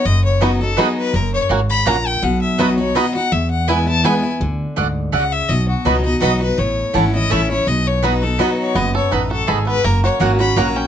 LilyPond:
<<
  \new Staff \with { instrumentName = "Fiddle" } { \time 3/4 \key b \mixolydian \tempo 4 = 165 dis''8 cis''8 b'8 a'8 gis'8 b'8 | ais'8 cis''8 r8 b''8 ais''8 g''8 | fis''8 e''8 dis''8 cis''8 dis''8 fis''8 | e''8 fis''8 gis''8 a''8 gis''8. r16 |
r2 fis''8 e''8 | dis''8 fis'8 b'8 dis''8 dis''8 b'8 | cis''4 fis''8 dis''8 e''8 cis''8 | dis''8 cis''8 b'8 a'8 b'8 cis''8 |
dis''8 cis''8 b'8 a'8 gis'8 b'8 | ais'8 cis''8 r8 b''8 ais''8 g''8 | }
  \new Staff \with { instrumentName = "Mandolin" } { \time 3/4 \key b \mixolydian r4 <b fis' dis'' b''>16 r8. <b fis' dis'' b''>16 r8. | r4 <ais fis' cis'' fis''>16 r8. <ais fis' cis'' fis''>16 r8. | r4 <b fis' dis'' b''>16 r8. <b fis' dis'' b''>16 r8. | r4 <b e' b' gis''>16 r8. <b e' b' gis''>16 r8. |
r4 <a fis' d'' fis''>16 r8. <a fis' d'' fis''>16 r8. | r4 <b fis' dis'' b''>16 r8. <b fis' dis'' b''>16 r8. | r4 <a e' cis'' a''>16 r8. <a e' cis'' a''>16 r8. | r4 <b fis' dis'' b''>16 r8. <b fis' dis'' b''>16 r8. |
r4 <b fis' dis'' b''>16 r8. <b fis' dis'' b''>16 r8. | r4 <ais fis' cis'' fis''>16 r8. <ais fis' cis'' fis''>16 r8. | }
  \new Staff \with { instrumentName = "Five-string banjo" } { \time 3/4 \key b \mixolydian r4 <b dis' fis'>8 r8 <b dis' fis'>8 r8 | r4 <ais cis' fis'>8 r8 <ais cis' fis'>8 r8 | r4 <b dis' fis'>8 r8 <b dis' fis'>8 r8 | r4 <b e'>8 r8 <b e'>8 r8 |
r2. | r2. | r2. | r2. |
b8 a'8 dis'8 fis'8 a'8 b8 | ais8 fis'8 ais8 fis'8 ais8 cis'8 | }
  \new Staff \with { instrumentName = "Steel-string acoustic guitar" } { \time 3/4 \key b \mixolydian << { r4 <fis b dis' fis'>8 <dis' fis'>8 <fis b dis' fis'>4 | r2. | r4 <fis b dis' fis'>8 <dis' fis'>8 <fis b dis' fis'>8 <dis' fis'>8 | r4 <e gis b e'>8 <b e'>8 <e gis b e'>8 <b e'>8 |
r2. | r4 <fis b dis' fis'>8 <dis' fis'>8 <fis b dis' fis'>8 <dis' fis'>8 | r4 <e a cis' e'>8 <cis' e'>8 <e a cis' e'>8 <cis' e'>8 | r4 <fis b dis' fis'>8 <dis' fis'>8 <fis b dis' fis'>4 |
r2. | r4 <fis ais cis' fis'>8 <cis' fis'>8 <fis ais cis' fis'>4 | } \\ { fis,2 r4 | fis,4 gis,4 ais,4 | b,2 r4 | e,2 r4 |
d4 gis,4 cis4 | b,2 r4 | a,2 r4 | b,2 r4 |
fis,4 a,4 gis,4 | fis,2 r4 | } >> }
  \new Staff \with { instrumentName = "Upright bass" } { \clef bass \time 3/4 \key b \mixolydian fis,,2. | fis,,4 gis,,4 ais,,4 | b,,2. | e,2. |
d,4 d,4 cis,4 | b,,4 cis,4 b,,4 | a,,4 gis,,4 a,,4 | b,,2. |
fis,,4 a,,4 gis,,4 | fis,,4 gis,,4 ais,,4 | }
>>